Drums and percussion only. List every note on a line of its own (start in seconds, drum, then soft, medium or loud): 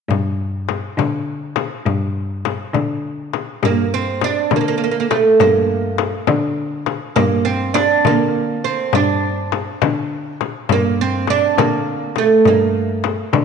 0.11 frame drum medium
0.69 frame drum medium
0.99 frame drum medium
1.56 frame drum medium
1.86 frame drum medium
2.45 frame drum medium
2.74 frame drum medium
3.33 frame drum medium
3.63 frame drum medium
4.21 frame drum medium
4.51 frame drum medium
5.11 frame drum medium
5.40 frame drum medium
5.98 frame drum medium
6.27 frame drum medium
6.86 frame drum medium
7.16 frame drum medium
7.75 frame drum medium
8.05 frame drum medium
8.93 frame drum medium
9.52 frame drum medium
9.82 frame drum medium
10.41 frame drum medium
10.69 frame drum medium
11.27 frame drum medium
11.58 frame drum medium
12.16 frame drum medium
12.45 frame drum medium
13.04 frame drum medium
13.33 frame drum medium